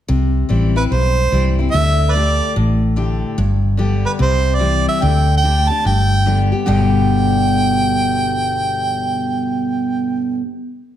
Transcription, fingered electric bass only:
0.09 0.42 C2 medium
0.50 0.85 A1 medium
0.91 1.26 B1 medium
1.32 1.67 C2 medium
1.73 2.40 D2 medium
2.56 3.22 A1 medium
3.38 4.04 G1 medium
4.20 4.86 C2 medium
5.03 5.69 D2 medium
5.85 6.51 G1 medium
6.68 10.38 G1 medium

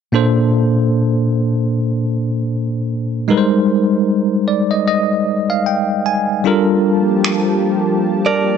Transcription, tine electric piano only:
0.12 3.25 A#2 medium
0.12 3.25 A#3 medium
0.12 3.25 D4 medium
0.12 3.26 A4 medium
0.12 3.26 C5 medium
3.28 6.41 G3 medium
3.28 6.40 G#3 medium
3.28 6.41 D#4 medium
3.28 6.42 A#4 medium
3.28 3.38 B4 medium
3.38 6.45 C5 medium
4.48 4.69 D5 medium
4.71 4.86 D#5 medium
4.87 5.46 D#5 medium
5.50 5.65 F5 medium
5.66 6.03 G5 medium
6.06 6.42 G#5 medium
6.44 8.57 G3 medium
6.44 8.57 D4 medium
6.44 8.57 F4 medium
6.44 8.57 A4 medium
6.44 8.57 A#4 medium

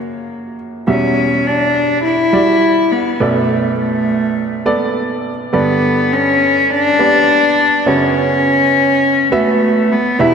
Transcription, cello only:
0.00 0.29 A#3 medium
0.89 1.48 C#4 medium
1.46 2.04 D4 loud
2.04 2.93 E4 loud
2.91 3.22 B3 medium
3.20 3.79 A3 medium
3.80 4.63 A3 medium
5.55 6.14 B3 loud
6.13 6.72 C#4 loud
6.70 7.89 D4 loud
7.88 9.32 C#4 loud
9.33 9.93 A3 loud
9.92 10.22 B3 loud
10.21 10.34 E4 loud

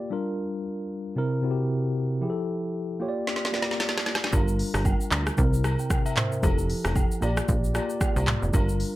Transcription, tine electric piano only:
0.00 0.13 A#3 loud
0.00 0.12 F4 medium
0.00 0.13 G4 medium
0.00 0.14 D5 loud
0.10 1.02 G3 medium
0.10 1.02 D4 medium
0.10 1.03 F4 medium
0.10 1.03 A#4 loud
1.16 1.39 C3 medium
1.16 1.40 C4 medium
1.16 1.40 E4 medium
1.16 1.41 A#4 loud
1.42 2.11 C3 medium
1.42 2.12 C4 medium
1.42 2.12 E4 medium
1.42 1.51 F#4 medium
1.51 2.16 G4 loud
2.21 3.00 F3 medium
2.21 3.01 E4 medium
2.21 3.00 G4 medium
2.21 2.30 G#4 medium
2.30 3.05 A4 loud
3.00 3.46 A#3 medium
3.00 3.47 F4 medium
3.00 3.47 G4 medium
3.00 3.09 C#5 medium
3.09 3.51 D5 loud
3.52 4.22 A#3 medium
3.52 4.22 F4 medium
3.52 4.23 G4 medium
3.52 4.23 D5 medium
4.32 5.23 G3 medium
4.32 5.23 D4 medium
4.32 5.24 F4 medium
4.32 5.24 A#4 medium
5.37 5.60 C3 medium
5.37 5.61 C4 medium
5.37 5.61 E4 medium
5.37 5.61 A#4 loud
5.79 6.04 G5 medium
6.06 6.16 E5 medium
6.17 6.31 C5 medium
6.32 6.57 A#4 medium
6.42 7.21 F3 medium
6.42 7.22 E4 medium
6.42 7.21 G4 medium
6.42 7.23 A4 medium
7.21 7.67 A#3 medium
7.21 7.68 F4 medium
7.21 7.68 G4 medium
7.21 7.69 D5 loud
7.74 8.43 A#3 medium
7.74 8.43 F4 medium
7.74 8.44 G4 medium
7.74 8.44 D5 loud
8.52 8.96 G3 medium
8.52 8.96 D4 medium
8.52 8.96 F4 medium
8.52 8.96 A#4 loud

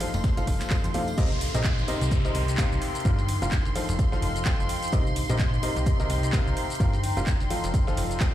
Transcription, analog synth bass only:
0.14 0.43 F1 medium
0.47 0.78 F1 loud
0.84 1.13 F2 medium
1.18 1.48 C2 loud
1.54 1.83 A#1 medium
2.01 2.30 C2 loud
2.35 2.65 C2 loud
2.72 2.79 C2 medium
3.05 3.36 G1 medium
3.42 3.71 F1 loud
3.89 4.18 F1 medium
4.22 4.53 F1 loud
4.59 4.66 F1 medium
4.93 5.23 C2 loud
5.29 5.58 A#1 loud
5.76 6.05 C2 medium
6.10 6.40 C2 loud
6.47 6.54 C2 medium
6.80 7.11 G1 loud
7.17 7.46 F1 loud
7.64 7.93 F1 medium
7.97 8.28 F1 loud

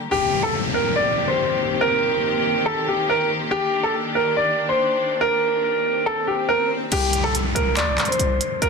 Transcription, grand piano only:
0.11 0.41 G4 loud
0.43 0.52 A4 medium
0.74 0.92 A#4 medium
0.96 1.26 D5 medium
1.28 1.78 C5 medium
1.81 2.62 A#4 medium
2.66 2.84 A4 medium
2.88 3.06 G4 medium
3.09 3.27 A#4 medium
3.51 3.81 G4 loud
3.83 3.92 A4 medium
4.15 4.33 A#4 medium
4.37 4.67 D5 medium
4.69 5.19 C5 medium
5.21 6.02 A#4 loud
6.06 6.24 A4 medium
6.27 6.46 G4 medium
6.49 6.67 A#4 medium
6.92 7.22 G4 loud
7.24 7.33 A4 medium
7.55 7.73 A#4 medium
7.77 8.07 D5 medium
8.08 8.59 C5 medium
8.62 8.69 A#4 medium

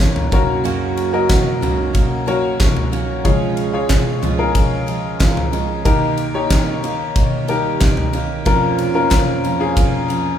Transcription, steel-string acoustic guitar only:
0.00 0.31 F3 medium
0.00 0.31 A#3 medium
0.00 0.32 C#4 medium
0.00 0.32 F4 medium
0.31 0.63 F#3 medium
0.31 0.64 A#3 medium
0.31 0.64 C#4 medium
0.31 0.64 F#4 medium
0.64 1.13 F#2 medium
0.64 1.13 C#3 medium
0.64 1.13 F#3 medium
0.64 1.13 A#3 medium
0.64 1.13 C#4 loud
0.64 1.12 F#4 loud
1.13 1.60 F#3 soft
1.13 1.61 A#3 medium
1.13 1.61 C#4 medium
1.13 1.62 F#4 medium
1.61 1.92 F#3 medium
1.61 1.93 A#3 medium
1.61 1.94 C#4 medium
1.61 1.94 F#4 medium
1.93 2.25 F#3 medium
1.93 2.26 A#3 medium
1.93 2.26 C#4 medium
1.93 2.27 F#4 medium
2.26 2.91 F#3 medium
2.26 2.91 A#3 medium
2.26 2.93 C#4 medium
2.26 2.93 F#4 medium
2.92 3.25 F#3 medium
2.92 3.25 A#3 medium
2.92 3.25 C#4 medium
2.92 3.26 F#4 medium
3.25 3.74 C#3 medium
3.25 3.74 F3 medium
3.25 3.74 G#3 medium
3.25 3.73 C#4 medium
3.25 3.72 F4 medium
3.73 4.21 G#3 soft
3.73 4.22 C#4 soft
3.73 4.22 F4 soft
4.22 4.53 F3 medium
4.22 4.54 G#3 medium
4.22 4.55 C#4 medium
4.22 4.55 F4 medium
4.54 4.85 F3 medium
4.54 4.86 G#3 medium
4.54 4.87 C#4 medium
4.54 4.88 F4 medium
4.87 5.51 F3 medium
4.87 5.51 G#3 medium
4.87 5.52 C#4 medium
4.87 5.52 F4 medium
5.52 5.85 F3 medium
5.52 5.85 G#3 medium
5.52 5.85 C#4 medium
5.52 5.86 F4 medium
5.85 6.34 D#3 medium
5.85 6.35 A#3 loud
5.85 6.34 D#4 medium
5.85 6.33 G4 loud
6.34 6.83 A#3 soft
6.34 6.83 D#4 medium
6.34 6.83 G4 medium
6.83 7.15 D#3 medium
6.83 7.15 A#3 medium
6.83 7.16 D#4 medium
6.83 7.17 G4 medium
7.16 7.46 D#3 medium
7.16 7.48 A#3 medium
7.16 7.48 D#4 medium
7.16 7.48 G4 medium
7.47 8.12 D#3 medium
7.47 8.14 A#3 medium
7.47 8.13 D#4 medium
7.47 8.14 G4 medium
8.13 8.45 D#3 medium
8.13 8.45 A#3 medium
8.13 8.46 D#4 medium
8.13 8.46 G4 medium
8.45 8.95 F3 loud
8.45 8.94 A#3 loud
8.45 8.94 C#4 loud
8.45 8.93 F4 loud
8.94 9.44 A#3 soft
8.94 9.44 C#4 medium
8.94 9.43 F4 medium
9.44 9.74 F3 medium
9.44 9.75 A#3 medium
9.44 9.76 C#4 medium
9.44 9.76 F4 medium
9.76 10.07 F3 medium
9.76 10.08 A#3 medium
9.76 10.09 C#4 medium
9.76 10.09 F4 medium
10.08 10.38 F3 medium
10.08 10.38 A#3 medium
10.08 10.38 C#4 medium
10.08 10.38 F4 medium

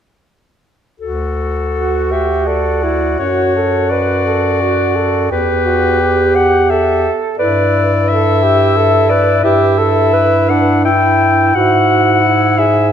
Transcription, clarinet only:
1.00 2.13 A4 soft
2.12 2.48 E5 soft
2.46 3.19 D5 soft
3.19 3.91 C#5 soft
3.90 5.30 D5 medium
5.32 6.37 B4 medium
6.36 6.72 F#5 medium
6.70 7.15 E5 soft
7.38 8.10 D5 medium
8.09 9.11 E5 medium
9.09 9.45 D5 medium
9.44 10.51 E5 medium
10.49 10.84 F#5 medium
10.85 11.57 G5 medium
11.55 12.60 F#5 medium
12.58 12.92 E5 medium

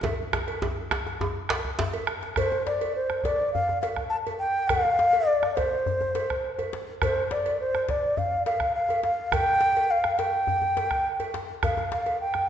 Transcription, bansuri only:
2.37 2.64 C5 medium
2.66 2.93 D5 medium
2.95 3.26 C5 medium
3.24 3.53 D5 medium
3.53 3.80 F5 medium
3.81 3.88 F5 medium
4.10 4.16 A5 medium
4.39 4.69 G5 medium
4.68 5.28 F5 loud
5.27 5.57 D5 medium
5.56 6.72 C5 medium
7.03 7.33 C5 medium
7.32 7.60 D5 medium
7.60 7.92 C5 medium
7.90 8.19 D5 medium
8.18 8.45 F5 medium
8.46 8.73 F5 medium
8.75 9.02 F5 medium
9.04 9.34 F5 medium
9.32 9.92 G5 loud
9.91 10.20 F5 loud
10.19 11.34 G5 loud
11.63 11.90 F5 medium
11.93 12.19 F5 medium
12.21 12.49 G5 medium

